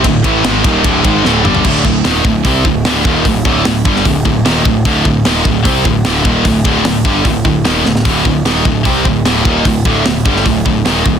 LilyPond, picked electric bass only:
\new Staff \with { instrumentName = "Picked electric bass" } { \clef bass \time 4/4 \key c \mixolydian \tempo 4 = 150 d,,8 a,,8 gis,,8 ees,,8 d,,8 gis,,8 d,,8 g,,8 | d,,8 d,,8 ees,,8 d,,8 c,8 d,,8 d,,8 ees,,8 | d,,8 d,,8 d,,8 g,,8 d,,8 d,,8 ees,,8 d,,8 | d,,8 d,,8 ees,,8 d,,8 c,8 d,,8 d,,8 ees,,8 |
d,,8 d,,8 d,,8 g,,8 d,,8 d,,8 ees,,8 d,,8 | d,,8 d,,8 ees,,8 d,,8 c,8 d,,8 d,,8 ees,,8 | d,,8 d,,8 d,,8 g,,8 d,,8 d,,8 ees,,8 d,,8 | }